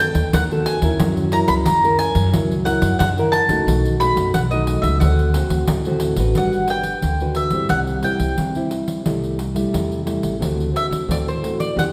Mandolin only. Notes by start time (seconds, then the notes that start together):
0.00 G5
0.34 F#5
0.66 G#5
1.33 A#5
1.48 B5
1.65 A#5
1.99 G#5
2.65 F#5
2.99 F#5
3.32 A5
4.00 B5
4.34 F#5
4.51 D#5
4.82 E5
5.00 F#5
6.38 F#5
6.70 G5
7.36 E5
7.70 F#5
8.04 G5
10.76 E5
11.12 D5
11.28 C5
11.60 D5
11.79 F#5